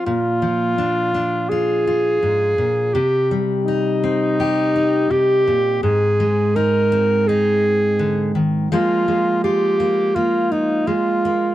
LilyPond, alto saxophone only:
\new Staff \with { instrumentName = "Alto saxophone" } { \time 4/4 \key bes \mixolydian \tempo 4 = 83 f'2 aes'2 | g'8 r8 ees'2 g'4 | aes'4 bes'4 aes'4. r8 | f'4 g'4 f'8 ees'8 f'4 | }